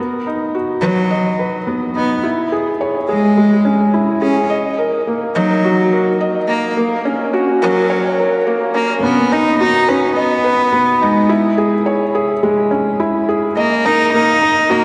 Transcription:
Already playing: B3
0.27 D#4
0.55 F#4
0.81 F#3 B4
1.11 D#5
1.39 B4
1.67 B3
1.95 B3 D#4
2.23 E4
2.52 G#4
2.81 C#5
3.08 G#3 G#4
3.37 G#3
3.65 C#4
3.94 E4
4.21 C#4 G#4
4.50 D#5
4.78 A#4
5.07 A#3
5.35 F#3 D#4
5.65 F#4
5.93 A#4
6.21 D#5
6.48 A#3 A#4
6.77 A#3
7.05 C#4
7.33 F#4
7.62 F#3 A#4
7.90 C#5
8.19 A#4
8.47 A#3
8.74 A#3 C#4
9.03 B3
9.32 D#4
9.60 D#4 F#4
9.88 C#4 B4
10.16 B3 D#5
10.44 B4
10.73 B3
11.01 G#3 D#4
11.29 E4
11.58 G#4
11.86 C#5
12.15 G#4
12.43 G#3
12.71 C#4
13.00 E4
13.29 G#4
13.57 A#3 D#5
13.85 D#4 A#4
14.14 A#3 D#4
14.41 D#4
14.69 A#3 F#4

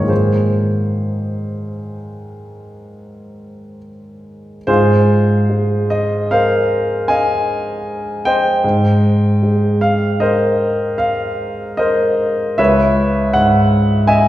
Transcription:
Already playing: F#2 G#2 D#3 E3 C#4 G#4 C#5 D#5
0.00 A#3 F4
0.07 G#4 C5
4.67 G#2 F4 G#4 C5
5.50 G#3
5.90 D#5
6.31 A#4 C5 F5
7.08 D#5 F5 G#5
8.25 C5 D#5 G5
8.64 G#2
9.43 G#3
9.81 F5
10.20 A#4 C5 D#5
10.98 F5
11.77 A#4 C5 D#5
12.58 C#2 B4 C#5 E5
13.33 G#2 F#5
14.07 D#5 E5 G#5

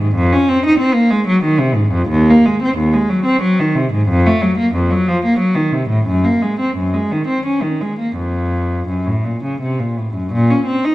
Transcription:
0.00 G#2
0.15 F2
0.33 C#4
0.49 C4
0.66 D#4
0.79 C4
0.94 A#3
1.10 G#3
1.27 F#3
1.43 D#3
1.59 C3
1.75 G#2
1.92 F2
2.09 D#2
2.30 A#3
2.46 G#3
2.62 C4
2.77 D#2
2.93 G#3
3.10 F#3
3.25 C4
3.42 F#3
3.59 D#3
3.75 C3
3.93 G#2
4.09 F2
4.26 A3
4.42 F#3
4.58 A#3
4.75 F2
4.90 F#3
5.08 F3
5.25 A#3
5.39 F#3
5.55 D#3
5.72 C3
5.89 A2
6.07 F#2
6.24 A#3
6.42 G#3
6.60 C4
6.77 F#2
6.94 G#3
7.12 D#3
7.27 C4
7.46 C#4
7.62 D#3
7.81 G#3
7.99 A#3
8.17 F2
8.88 F#2
9.07 A2
9.24 A#2
9.43 C#3
9.61 C3
9.79 A#2
9.97 A2
10.14 F#2
10.32 A#2
10.50 C#4
10.66 C4
10.85 D#4

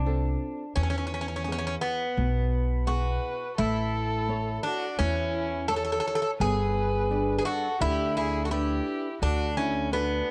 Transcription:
Already playing: C2 D4
0.06 C4 F4 A4
0.76 E2 E3 C#4
0.83 C#4
0.90 C#4
0.98 C#4
1.07 C#4
1.14 C#4
1.21 C#4
1.28 C#4
1.36 C#4
1.44 B3 C#4 E4 G#4
1.52 C#4
1.59 C#4
1.67 C#4
1.81 B3
2.17 B1 B2
2.87 B3 E4 F#4 G#4 B4
3.58 A1 A3 E4 A4
4.28 E4 A4 C#5
4.63 D4 F#4
4.99 E2 E3 C#4 E4
5.68 E4 A4 C#5
5.76 A4
5.85 A4
5.92 A4
6.00 A4
6.07 A4
6.15 A4
6.22 A4
6.40 G1 B3 G#4 B4
7.10 G3 D4 B4
7.38 G#4 B4
7.45 F#4 A4
7.80 D2 D3 E4 G4
8.17 E4 G#4
8.44 F#4 A4
8.51 D4 E4 G4 B4
9.22 D2 D3 D4 F#4
9.57 C#4 E4
9.92 B3 D4 F#4 A4

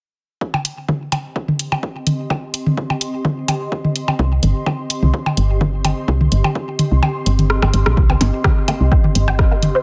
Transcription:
0.41 C4, kick
0.54 high tom, percussion blips
0.65 closed hi-hat
0.89 D#5, kick, high tom
0.93 G4
1.08 C6
1.12 closed hi-hat, high tom, percussion blips
1.36 kick
1.48 high tom
1.59 closed hi-hat
1.72 high tom, percussion blips
1.83 kick
2.07 closed hi-hat, high tom
2.30 kick, high tom, percussion blips
2.54 closed hi-hat
2.67 high tom
2.77 kick
2.90 high tom, percussion blips
3.01 closed hi-hat
3.25 kick, high tom
3.48 closed hi-hat, high tom, percussion blips
3.72 kick
3.85 high tom
3.96 closed hi-hat
4.08 high tom, percussion blips
4.19 C2, kick
4.43 G1, closed hi-hat, high tom
4.66 kick, high tom, percussion blips
4.90 closed hi-hat
5.03 C2, high tom
5.14 kick
5.26 high tom, percussion blips
5.37 G1, closed hi-hat
5.61 kick, high tom
5.85 closed hi-hat, high tom, percussion blips
6.08 C2, kick
6.21 high tom
6.32 G1, closed hi-hat
6.44 high tom, percussion blips
6.55 kick
6.79 closed hi-hat, high tom
6.92 C2
7.03 high tom, percussion blips
7.26 G1, closed hi-hat
7.39 closed hi-hat, high tom
7.50 cross-stick
7.62 G1, cross-stick, high tom, percussion blips
7.74 G1, closed hi-hat
7.86 A#1, cross-stick
7.97 C2, kick
8.10 C4, high tom, percussion blips
8.21 G1, closed hi-hat, percussion blips
8.44 G4, kick, cross-stick, high tom
8.68 A#3, closed hi-hat, high tom, percussion blips
8.81 C2
8.92 C4, kick
9.04 high tom
9.15 G1, closed hi-hat
9.28 G4, high tom, percussion blips
9.39 kick, cross-stick
9.51 A#3
9.63 closed hi-hat, high tom
9.75 C4

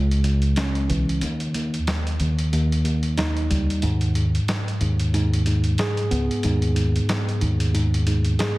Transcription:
Already playing: C#2
0.11 closed hi-hat
0.23 C#2, closed hi-hat
0.42 closed hi-hat
0.56 C#4, snare, closed hi-hat
0.75 closed hi-hat
0.89 B1 E3, closed hi-hat
1.09 closed hi-hat
1.21 D#2, closed hi-hat
1.40 closed hi-hat
1.54 D#2, closed hi-hat
1.74 closed hi-hat
1.87 snare, closed hi-hat
2.07 closed hi-hat
2.20 D#2, closed hi-hat
2.39 closed hi-hat
2.53 D#2, closed hi-hat
2.72 closed hi-hat
2.85 D#2, closed hi-hat
3.03 closed hi-hat
3.17 D#4, snare, closed hi-hat
3.37 closed hi-hat
3.50 C#2 G3, closed hi-hat
3.70 closed hi-hat
3.82 D#2 G#2, closed hi-hat
4.01 closed hi-hat
4.15 G#2, closed hi-hat
4.35 closed hi-hat
4.48 snare, closed hi-hat
4.68 closed hi-hat
4.81 D#2 G#2, closed hi-hat
4.99 closed hi-hat
5.14 G#2, closed hi-hat
5.33 closed hi-hat
5.46 G#2, closed hi-hat
5.64 closed hi-hat
5.78 G#4, snare, closed hi-hat
5.97 closed hi-hat
6.11 C#2 B3, closed hi-hat
6.31 closed hi-hat
6.43 D#2 G#2, closed hi-hat
6.62 closed hi-hat
6.75 G#2, closed hi-hat
6.96 closed hi-hat
7.09 snare, closed hi-hat
7.29 closed hi-hat
7.40 D#2 G#2, closed hi-hat
7.60 closed hi-hat
7.74 G#2, closed hi-hat
7.94 closed hi-hat
8.07 G#2, closed hi-hat
8.25 closed hi-hat
8.39 G#4, snare, closed hi-hat

